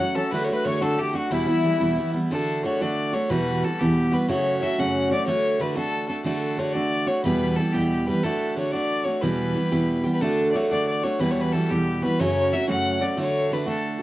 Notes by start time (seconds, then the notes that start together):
Already playing: F#5
0.00 F#3 A3 C#4 F#4
0.06 F#5
0.15 F#3 A3 C#4 F#4 A4
0.31 D3 A3 D4 F#4 B4
0.44 C#5
0.50 A3 D4 F#4 B4
0.55 B4
0.64 D3 A3 D4 F#4 C#5
0.81 D3 A3 D4 F#4 A4
0.98 D3 A3 D4 F#4 G4
1.14 A3 D4 F#4
1.31 E2 B2 E3 G3 B3 E4
1.46 E3 G3 B3 E4
1.63 E3 G3 B3 E4
1.80 E2 B2 E3 G3 B3 E4
1.97 E3 G3 B3 E4
2.13 E3 G3 B3 E4
2.31 D3 A3 D4 F#4 A4
2.63 D3 A3 D4 F#4 C#5
2.81 D3 A3 D4 F#4 D5
3.13 A3 D4 F#4 C#5
3.30 E2 B2 E3 G3 B3 F#4 B4
3.63 E3 G3 B3 F#4 A4
3.79 E2 B2 E3 G3 B3 G4
4.12 E3 G3 B3 F#4 B4
4.28 F#2 C#3 F#3 A3 C#4 F#4 C#5
4.61 F#3 A3 C#4 F#4 E5
4.78 F#2 C#3 F#3 A3 C#4 F#4 F#5
5.10 F#3 A3 C#4 F#4 D5
5.26 D3 A3 D4 F#4 C#5
5.60 D3 A3 D4 F#4 B4
5.76 D3 A3 D4 F#4 A4
6.08 A3 D4 F#4 A4
6.24 D3 A3 D4 F#4 A4
6.58 D3 A3 D4 F#4 C#5
6.73 D3 A3 D4 F#4 D5
7.07 A3 D4 F#4 C#5
7.24 E2 B2 E3 G3 B3 G4 B4
7.56 E3 G3 B3 G4 A4
7.72 E2 B2 E3 G3 B3 G4
8.07 E3 G3 B3 G4 B4
8.23 D3 A3 D4 F#4 A4
8.57 D3 A3 D4 F#4 C#5
8.72 D3 A3 D4 F#4 D5
9.04 D4 F#4 C#5
9.08 A3
9.21 E2 B2 E3 G3 B3 G4 B4
9.55 E3 G3 B3 G4
9.71 E2 B2 E3 G3 B3 G4
10.04 E3 G3 B3 G4
10.13 B4
10.21 D3 A3 D4 F#4 A4
10.51 D3 A3 D5
10.55 D4 F#4 C#5
10.71 D3 A3 D4 F#4 D5
10.87 D5
11.03 A3 D4 F#4 C#5
11.19 E2 B2 E3 G3 B3 F#4 B4
11.31 C#5
11.41 B4
11.52 E3 G3 B3 F#4 A4
11.70 E2 B2 E3 G3 B3 G4
12.02 E3 G3 B3 F#4 B4
12.20 F#2 C#3 F#3 A3 C#4 F#4 C#5
12.52 F#3 A3 C#4 F#4 E5
12.67 F#2 C#3 F#3 A3 C#4 F#4 F#5
13.00 F#3 A3 C#4 F#4 D5
13.17 D3 A3 D4 F#4 C#5
13.51 D3 A3 D4 F#4 B4
13.66 D3 A3 D4 F#4 A4
13.99 F#4